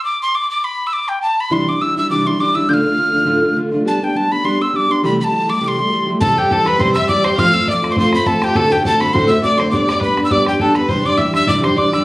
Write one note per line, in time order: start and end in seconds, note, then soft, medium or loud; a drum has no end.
0.05 0.19 D6 medium
0.22 0.37 C6 medium
0.35 0.50 D6 medium
0.51 0.66 D6 medium
0.64 0.88 B5 medium
0.87 0.95 E6 medium
0.93 1.10 D6 medium
1.08 1.21 G5 medium
1.22 1.42 A5 medium
1.40 1.54 B5 medium
1.50 1.66 C3 medium
1.50 1.67 E3 medium
1.50 1.67 G3 medium
1.50 1.67 D4 medium
1.50 1.65 E4 medium
1.50 1.70 C6 medium
1.67 1.80 G3 soft
1.67 1.80 D4 soft
1.67 1.80 E4 soft
1.67 1.83 D6 medium
1.80 1.96 E3 soft
1.80 1.96 G3 soft
1.80 1.96 D4 soft
1.80 1.95 E4 medium
1.80 1.97 E6 medium
1.96 2.10 G3 soft
1.96 2.10 D4 soft
1.96 2.10 E4 soft
1.96 2.10 E6 medium
2.10 2.25 C3 medium
2.10 2.26 E3 medium
2.10 2.26 G3 medium
2.10 2.25 D4 medium
2.10 2.24 E4 medium
2.10 2.28 D6 medium
2.25 2.38 G3 soft
2.25 2.39 D4 soft
2.25 2.39 E4 soft
2.25 2.42 C6 medium
2.39 2.55 E3 medium
2.39 2.55 G3 medium
2.39 2.55 D4 medium
2.39 2.53 E4 medium
2.39 2.57 D6 medium
2.55 2.69 G3 soft
2.55 2.69 D4 soft
2.55 2.68 E4 soft
2.55 2.71 E6 medium
2.68 2.84 D2 medium
2.68 2.84 A2 medium
2.68 2.83 D3 medium
2.68 2.82 A3 medium
2.68 2.82 D4 medium
2.68 2.81 F4 medium
2.68 2.74 G6 medium
2.73 3.57 F6 medium
2.82 2.96 D3 soft
2.82 2.97 A3 soft
2.82 2.97 D4 soft
2.82 2.97 F4 soft
2.98 3.13 D3 soft
2.98 3.12 A3 soft
2.98 3.11 D4 medium
2.98 3.11 F4 medium
3.12 3.24 D3 soft
3.12 3.25 A3 soft
3.12 3.25 D4 soft
3.12 3.25 F4 medium
3.24 3.42 D2 medium
3.24 3.42 A2 medium
3.24 3.42 D3 medium
3.24 3.42 A3 medium
3.24 3.42 D4 medium
3.24 3.41 F4 medium
3.42 3.55 D3 soft
3.42 3.55 A3 soft
3.42 3.56 D4 medium
3.42 3.56 F4 soft
3.56 3.72 D3 medium
3.56 3.72 A3 medium
3.56 3.71 D4 medium
3.56 3.70 F4 medium
3.72 3.85 D3 soft
3.72 3.85 A3 soft
3.72 3.85 D4 medium
3.72 3.86 F4 medium
3.85 4.01 G3 medium
3.85 4.01 B3 medium
3.85 4.01 D4 medium
3.85 3.99 G4 medium
3.85 4.05 A5 medium
4.01 4.14 B3 soft
4.01 4.16 D4 soft
4.01 4.15 G4 soft
4.01 4.18 G5 medium
4.15 4.31 G3 soft
4.15 4.31 B3 soft
4.15 4.31 D4 soft
4.15 4.29 G4 soft
4.15 4.33 A5 medium
4.31 4.43 B3 soft
4.31 4.44 D4 soft
4.31 4.44 G4 soft
4.31 4.46 B5 medium
4.44 4.60 G3 medium
4.44 4.60 B3 medium
4.44 4.60 D4 medium
4.44 4.59 G4 medium
4.44 4.63 C6 loud
4.60 4.73 B3 soft
4.60 4.74 D4 soft
4.60 4.74 G4 soft
4.60 4.78 E6 medium
4.74 4.90 G3 medium
4.74 4.89 B3 medium
4.74 4.89 D4 medium
4.74 4.87 G4 medium
4.74 4.93 D6 medium
4.89 5.03 B3 soft
4.89 5.04 D4 soft
4.89 5.03 G4 soft
4.89 5.04 C6 medium
5.03 5.19 C3 medium
5.03 5.19 E3 medium
5.03 5.19 G3 medium
5.03 5.18 A3 medium
5.03 5.17 G4 medium
5.03 5.19 B5 medium
5.18 5.31 G3 soft
5.18 5.32 A3 soft
5.18 5.32 G4 soft
5.18 5.25 B5 medium
5.24 5.51 A5 medium
5.32 5.48 E3 soft
5.32 5.49 G3 medium
5.32 5.48 A3 soft
5.32 5.47 G4 medium
5.48 5.61 G3 soft
5.48 5.60 A3 soft
5.48 5.61 G4 soft
5.48 5.64 D6 medium
5.61 5.78 C3 medium
5.61 5.78 E3 medium
5.61 5.78 G3 medium
5.61 5.77 A3 medium
5.61 5.76 G4 medium
5.61 5.69 D6 medium
5.68 6.09 C6 medium
5.78 5.91 G3 soft
5.78 5.91 A3 soft
5.78 5.92 G4 soft
5.91 6.07 E3 medium
5.91 6.08 G3 medium
5.91 6.07 A3 medium
5.91 6.06 G4 medium
6.07 6.20 G3 soft
6.07 6.21 A3 soft
6.07 6.21 G4 medium
6.20 6.37 C3 medium
6.20 6.37 E3 medium
6.20 6.37 G3 medium
6.20 6.36 C4 medium
6.20 6.35 G4 medium
6.20 6.40 A4 medium
6.20 6.40 A5 loud
6.20 bodhran medium
6.36 6.50 G3 soft
6.36 6.51 C4 medium
6.36 6.50 G4 medium
6.36 6.53 G4 medium
6.36 6.54 G5 medium
6.51 6.66 E3 medium
6.51 6.67 G3 medium
6.51 6.66 C4 medium
6.51 6.65 G4 medium
6.51 6.69 A4 medium
6.51 6.69 A5 medium
6.51 bodhran medium
6.66 6.78 G3 soft
6.66 6.79 C4 soft
6.66 6.79 G4 soft
6.66 6.83 B4 medium
6.66 6.81 B5 medium
6.66 bodhran medium
6.78 6.95 C3 medium
6.78 6.95 E3 medium
6.78 6.95 G3 medium
6.78 6.95 C4 medium
6.78 6.94 G4 medium
6.78 6.96 C5 medium
6.78 6.93 C6 medium
6.78 bodhran medium
6.94 7.09 G3 soft
6.94 7.09 C4 soft
6.94 7.09 G4 medium
6.94 7.08 E5 medium
6.94 7.08 E6 loud
6.94 bodhran medium
7.08 7.25 E3 medium
7.08 7.25 G3 medium
7.08 7.24 C4 medium
7.08 7.23 G4 medium
7.08 7.26 D5 medium
7.08 7.26 D6 medium
7.08 bodhran medium
7.24 7.38 G3 soft
7.24 7.38 C4 soft
7.24 7.38 G4 soft
7.24 7.36 C5 medium
7.24 7.40 C6 medium
7.24 bodhran medium
7.37 7.54 F3 medium
7.37 7.54 A3 medium
7.37 7.54 C4 medium
7.37 7.53 F4 medium
7.37 7.70 F5 loud
7.37 7.55 F6 loud
7.37 bodhran medium
7.54 7.67 A3 medium
7.54 7.67 C4 soft
7.54 7.68 F4 soft
7.54 7.68 E6 medium
7.67 7.83 F3 medium
7.67 7.82 A3 medium
7.67 7.84 C4 medium
7.67 7.81 F4 medium
7.67 7.92 D5 medium
7.67 7.94 D6 loud
7.67 bodhran medium
7.82 7.96 A3 medium
7.82 7.96 C4 soft
7.82 7.97 F4 medium
7.82 bodhran medium
7.90 7.96 C5 medium
7.90 7.98 C6 medium
7.96 8.13 F3 medium
7.96 8.13 A3 medium
7.96 8.13 C4 medium
7.96 8.12 F4 loud
7.96 8.28 C5 medium
7.96 8.13 C6 loud
7.96 bodhran medium
8.13 8.26 A3 medium
8.13 8.26 C4 soft
8.13 8.27 F4 medium
8.13 8.28 B5 medium
8.13 bodhran medium
8.26 8.42 F3 medium
8.26 8.42 A3 medium
8.26 8.43 C4 medium
8.26 8.41 F4 medium
8.26 8.42 A4 medium
8.26 8.45 A5 loud
8.26 bodhran medium
8.42 8.55 A3 soft
8.42 8.55 C4 soft
8.42 8.56 F4 soft
8.42 8.58 G4 medium
8.42 8.57 G5 medium
8.42 bodhran medium
8.55 8.71 D2 medium
8.55 8.72 A2 medium
8.55 8.71 D3 medium
8.55 8.70 A3 medium
8.55 8.71 C4 medium
8.55 8.69 F#4 medium
8.55 8.73 A4 medium
8.55 8.74 A5 loud
8.55 bodhran medium
8.70 8.84 D3 soft
8.70 8.85 A3 soft
8.70 8.84 C4 soft
8.70 8.85 F#4 soft
8.70 8.85 G4 medium
8.70 8.85 G5 loud
8.85 9.01 D3 soft
8.85 9.00 A3 medium
8.85 9.00 C4 soft
8.85 8.99 F#4 soft
8.85 9.13 A4 medium
8.85 9.02 A5 loud
8.85 bodhran medium
9.00 9.13 D3 soft
9.00 9.14 A3 medium
9.00 9.13 C4 soft
9.00 9.14 F#4 soft
9.00 9.15 B5 loud
9.00 bodhran soft
9.13 9.30 D2 medium
9.13 9.30 A2 medium
9.13 9.30 D3 medium
9.13 9.29 A3 medium
9.13 9.29 C4 medium
9.13 9.29 F#4 loud
9.13 9.31 C5 medium
9.13 9.27 C6 medium
9.13 bodhran medium
9.28 9.41 D3 soft
9.28 9.43 A3 soft
9.28 9.41 C4 soft
9.28 9.43 F#4 medium
9.28 9.44 E5 loud
9.28 9.41 E6 medium
9.42 9.59 D3 medium
9.42 9.57 A3 medium
9.42 9.58 C4 medium
9.42 9.57 F#4 medium
9.42 9.61 D5 medium
9.42 9.59 D6 medium
9.42 bodhran medium
9.58 9.71 D3 soft
9.58 9.72 A3 medium
9.58 9.72 C4 soft
9.58 9.72 F#4 medium
9.58 9.77 C5 medium
9.58 9.70 C6 medium
9.58 bodhran medium
9.71 9.88 G3 medium
9.71 9.88 B3 medium
9.71 9.87 D4 medium
9.71 9.86 G4 medium
9.71 9.86 D6 loud
9.71 bodhran medium
9.76 9.89 D5 loud
9.87 10.00 B3 soft
9.87 10.01 D4 medium
9.87 10.01 G4 medium
9.87 10.02 D5 medium
9.87 10.01 D6 medium
9.87 bodhran medium
10.00 10.17 G3 medium
10.00 10.17 B3 medium
10.00 10.17 D4 soft
10.00 10.16 G4 medium
10.00 10.30 B4 medium
10.00 10.23 B5 medium
10.00 bodhran medium
10.17 10.30 B3 soft
10.17 10.31 D4 soft
10.17 10.30 G4 soft
10.17 bodhran medium
10.25 10.33 E6 medium
10.31 10.47 G3 medium
10.31 10.47 B3 medium
10.31 10.47 D4 medium
10.31 10.46 G4 medium
10.31 10.46 D5 medium
10.31 10.47 D6 medium
10.31 bodhran medium
10.46 10.60 B3 soft
10.46 10.60 D4 medium
10.46 10.59 G4 medium
10.46 10.61 G4 medium
10.46 10.63 G5 medium
10.46 bodhran medium
10.60 10.76 G3 medium
10.60 10.77 B3 medium
10.60 10.76 D4 medium
10.60 10.74 G4 medium
10.60 10.75 A4 medium
10.60 10.77 A5 medium
10.60 bodhran medium
10.75 10.89 B3 soft
10.75 10.89 D4 medium
10.75 10.89 G4 medium
10.75 10.90 B4 medium
10.75 10.89 B5 medium
10.75 bodhran soft
10.88 11.05 C3 medium
10.88 11.05 E3 medium
10.88 11.05 G3 medium
10.88 11.05 D4 medium
10.88 11.03 G4 medium
10.88 11.04 C5 medium
10.88 11.07 C6 loud
10.88 bodhran medium
11.04 11.17 G3 soft
11.04 11.18 D4 soft
11.04 11.18 G4 soft
11.04 11.19 D5 medium
11.04 11.19 D6 medium
11.17 11.34 E3 medium
11.17 11.34 G3 soft
11.17 11.33 D4 medium
11.17 11.32 G4 medium
11.17 11.34 E5 medium
11.17 11.34 E6 medium
11.17 bodhran medium
11.33 11.46 G3 soft
11.33 11.47 D4 soft
11.33 11.47 G4 medium
11.33 11.49 E5 medium
11.33 11.48 E6 loud
11.33 bodhran medium
11.47 11.63 C3 medium
11.47 11.63 E3 medium
11.47 11.63 G3 medium
11.47 11.62 D4 medium
11.47 11.61 G4 medium
11.47 11.62 D5 medium
11.47 11.65 D6 medium
11.47 bodhran medium
11.62 11.76 G3 soft
11.62 11.76 D4 medium
11.62 11.77 G4 medium
11.62 11.78 C5 medium
11.62 11.80 C6 medium
11.62 bodhran medium
11.76 11.92 E3 medium
11.76 11.92 G3 medium
11.76 11.92 D4 medium
11.76 11.91 G4 medium
11.76 12.04 D5 medium
11.76 11.93 D6 medium
11.76 bodhran medium
11.92 12.04 G3 soft
11.92 12.04 D4 soft
11.92 12.04 G4 medium
11.92 12.04 E6 medium
11.92 bodhran soft